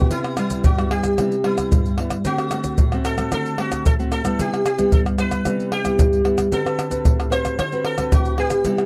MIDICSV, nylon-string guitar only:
0, 0, Header, 1, 2, 480
1, 0, Start_track
1, 0, Tempo, 533808
1, 103, Time_signature, 4, 2, 24, 8
1, 7963, End_track
2, 0, Start_track
2, 0, Title_t, "Nylon-string guitar"
2, 0, Program_c, 0, 24
2, 0, Note_on_c, 0, 59, 58
2, 0, Note_on_c, 0, 64, 62
2, 0, Note_on_c, 0, 67, 68
2, 108, Note_on_c, 0, 48, 75
2, 300, Note_off_c, 0, 59, 0
2, 303, Note_off_c, 0, 64, 0
2, 304, Note_off_c, 0, 67, 0
2, 343, Note_on_c, 0, 55, 66
2, 344, Note_on_c, 0, 59, 59
2, 350, Note_on_c, 0, 64, 63
2, 562, Note_off_c, 0, 48, 0
2, 581, Note_on_c, 0, 43, 74
2, 665, Note_off_c, 0, 55, 0
2, 665, Note_off_c, 0, 59, 0
2, 668, Note_off_c, 0, 64, 0
2, 705, Note_on_c, 0, 55, 58
2, 711, Note_on_c, 0, 59, 61
2, 711, Note_on_c, 0, 64, 65
2, 1027, Note_off_c, 0, 55, 0
2, 1028, Note_off_c, 0, 59, 0
2, 1029, Note_off_c, 0, 64, 0
2, 1039, Note_off_c, 0, 43, 0
2, 1065, Note_on_c, 0, 48, 67
2, 1069, Note_on_c, 0, 55, 62
2, 1071, Note_on_c, 0, 59, 50
2, 1074, Note_on_c, 0, 64, 59
2, 1206, Note_off_c, 0, 55, 0
2, 1209, Note_off_c, 0, 59, 0
2, 1209, Note_off_c, 0, 64, 0
2, 1294, Note_on_c, 0, 55, 54
2, 1300, Note_on_c, 0, 59, 58
2, 1305, Note_on_c, 0, 64, 65
2, 1521, Note_off_c, 0, 48, 0
2, 1540, Note_on_c, 0, 43, 72
2, 1741, Note_off_c, 0, 55, 0
2, 1744, Note_off_c, 0, 59, 0
2, 1745, Note_off_c, 0, 64, 0
2, 1779, Note_on_c, 0, 55, 59
2, 1782, Note_on_c, 0, 59, 52
2, 1787, Note_on_c, 0, 64, 63
2, 1936, Note_off_c, 0, 55, 0
2, 1938, Note_off_c, 0, 59, 0
2, 1939, Note_off_c, 0, 64, 0
2, 1998, Note_off_c, 0, 43, 0
2, 2024, Note_on_c, 0, 50, 78
2, 2028, Note_on_c, 0, 57, 64
2, 2031, Note_on_c, 0, 60, 64
2, 2034, Note_on_c, 0, 66, 64
2, 2227, Note_off_c, 0, 57, 0
2, 2228, Note_off_c, 0, 60, 0
2, 2231, Note_off_c, 0, 66, 0
2, 2268, Note_on_c, 0, 57, 54
2, 2271, Note_on_c, 0, 60, 58
2, 2276, Note_on_c, 0, 66, 63
2, 2481, Note_off_c, 0, 50, 0
2, 2491, Note_off_c, 0, 57, 0
2, 2493, Note_off_c, 0, 66, 0
2, 2494, Note_off_c, 0, 60, 0
2, 2507, Note_on_c, 0, 45, 74
2, 2638, Note_on_c, 0, 57, 66
2, 2643, Note_on_c, 0, 60, 65
2, 2643, Note_on_c, 0, 66, 65
2, 2833, Note_off_c, 0, 57, 0
2, 2834, Note_off_c, 0, 60, 0
2, 2836, Note_off_c, 0, 66, 0
2, 2860, Note_on_c, 0, 57, 66
2, 2864, Note_on_c, 0, 60, 60
2, 2869, Note_on_c, 0, 66, 65
2, 2962, Note_off_c, 0, 45, 0
2, 2984, Note_on_c, 0, 50, 76
2, 3184, Note_off_c, 0, 57, 0
2, 3185, Note_off_c, 0, 60, 0
2, 3188, Note_off_c, 0, 66, 0
2, 3224, Note_on_c, 0, 57, 53
2, 3228, Note_on_c, 0, 60, 56
2, 3231, Note_on_c, 0, 66, 64
2, 3441, Note_off_c, 0, 50, 0
2, 3450, Note_off_c, 0, 57, 0
2, 3451, Note_off_c, 0, 60, 0
2, 3453, Note_off_c, 0, 66, 0
2, 3463, Note_on_c, 0, 45, 75
2, 3588, Note_on_c, 0, 57, 58
2, 3590, Note_on_c, 0, 60, 60
2, 3593, Note_on_c, 0, 66, 68
2, 3788, Note_off_c, 0, 57, 0
2, 3789, Note_off_c, 0, 60, 0
2, 3789, Note_off_c, 0, 66, 0
2, 3813, Note_on_c, 0, 55, 70
2, 3820, Note_on_c, 0, 59, 69
2, 3821, Note_on_c, 0, 64, 71
2, 3920, Note_off_c, 0, 45, 0
2, 3944, Note_on_c, 0, 48, 71
2, 4141, Note_off_c, 0, 55, 0
2, 4143, Note_off_c, 0, 59, 0
2, 4144, Note_off_c, 0, 64, 0
2, 4299, Note_on_c, 0, 55, 67
2, 4304, Note_on_c, 0, 59, 66
2, 4305, Note_on_c, 0, 64, 64
2, 4400, Note_off_c, 0, 48, 0
2, 4422, Note_on_c, 0, 43, 79
2, 4623, Note_off_c, 0, 55, 0
2, 4626, Note_off_c, 0, 59, 0
2, 4626, Note_off_c, 0, 64, 0
2, 4663, Note_on_c, 0, 55, 65
2, 4667, Note_on_c, 0, 59, 63
2, 4670, Note_on_c, 0, 64, 70
2, 4866, Note_off_c, 0, 55, 0
2, 4866, Note_off_c, 0, 59, 0
2, 4869, Note_off_c, 0, 64, 0
2, 4879, Note_off_c, 0, 43, 0
2, 4899, Note_on_c, 0, 48, 77
2, 4903, Note_on_c, 0, 55, 65
2, 4908, Note_on_c, 0, 59, 56
2, 4911, Note_on_c, 0, 64, 64
2, 5225, Note_off_c, 0, 55, 0
2, 5228, Note_off_c, 0, 59, 0
2, 5229, Note_off_c, 0, 64, 0
2, 5247, Note_on_c, 0, 55, 58
2, 5252, Note_on_c, 0, 59, 61
2, 5257, Note_on_c, 0, 64, 68
2, 5358, Note_off_c, 0, 48, 0
2, 5378, Note_on_c, 0, 43, 67
2, 5577, Note_off_c, 0, 55, 0
2, 5580, Note_off_c, 0, 59, 0
2, 5581, Note_off_c, 0, 64, 0
2, 5610, Note_on_c, 0, 55, 57
2, 5613, Note_on_c, 0, 59, 58
2, 5619, Note_on_c, 0, 64, 71
2, 5819, Note_off_c, 0, 55, 0
2, 5820, Note_off_c, 0, 59, 0
2, 5823, Note_off_c, 0, 64, 0
2, 5837, Note_off_c, 0, 43, 0
2, 5859, Note_on_c, 0, 50, 74
2, 5859, Note_on_c, 0, 60, 63
2, 5866, Note_on_c, 0, 71, 68
2, 5867, Note_on_c, 0, 66, 56
2, 5943, Note_off_c, 0, 60, 0
2, 5945, Note_off_c, 0, 66, 0
2, 5947, Note_off_c, 0, 71, 0
2, 5975, Note_on_c, 0, 60, 65
2, 5980, Note_on_c, 0, 66, 60
2, 5983, Note_on_c, 0, 71, 74
2, 6181, Note_off_c, 0, 60, 0
2, 6182, Note_off_c, 0, 66, 0
2, 6185, Note_off_c, 0, 71, 0
2, 6205, Note_on_c, 0, 60, 64
2, 6212, Note_on_c, 0, 66, 63
2, 6212, Note_on_c, 0, 71, 64
2, 6318, Note_off_c, 0, 50, 0
2, 6335, Note_on_c, 0, 45, 74
2, 6536, Note_off_c, 0, 60, 0
2, 6538, Note_off_c, 0, 66, 0
2, 6539, Note_off_c, 0, 71, 0
2, 6564, Note_on_c, 0, 60, 62
2, 6570, Note_on_c, 0, 66, 61
2, 6574, Note_on_c, 0, 71, 65
2, 6795, Note_off_c, 0, 45, 0
2, 6798, Note_off_c, 0, 60, 0
2, 6802, Note_off_c, 0, 66, 0
2, 6803, Note_off_c, 0, 71, 0
2, 6820, Note_on_c, 0, 50, 67
2, 6943, Note_on_c, 0, 60, 59
2, 6948, Note_on_c, 0, 66, 65
2, 6955, Note_on_c, 0, 71, 73
2, 7144, Note_off_c, 0, 60, 0
2, 7147, Note_off_c, 0, 66, 0
2, 7150, Note_off_c, 0, 71, 0
2, 7174, Note_on_c, 0, 60, 59
2, 7179, Note_on_c, 0, 66, 65
2, 7184, Note_on_c, 0, 71, 63
2, 7277, Note_off_c, 0, 50, 0
2, 7298, Note_on_c, 0, 45, 76
2, 7499, Note_off_c, 0, 60, 0
2, 7502, Note_off_c, 0, 66, 0
2, 7504, Note_off_c, 0, 71, 0
2, 7534, Note_on_c, 0, 60, 56
2, 7539, Note_on_c, 0, 66, 57
2, 7542, Note_on_c, 0, 71, 62
2, 7755, Note_off_c, 0, 45, 0
2, 7758, Note_off_c, 0, 60, 0
2, 7760, Note_off_c, 0, 66, 0
2, 7762, Note_off_c, 0, 71, 0
2, 7775, Note_on_c, 0, 55, 57
2, 7781, Note_on_c, 0, 48, 72
2, 7784, Note_on_c, 0, 59, 57
2, 7788, Note_on_c, 0, 64, 66
2, 7963, Note_off_c, 0, 48, 0
2, 7963, Note_off_c, 0, 55, 0
2, 7963, Note_off_c, 0, 59, 0
2, 7963, Note_off_c, 0, 64, 0
2, 7963, End_track
0, 0, End_of_file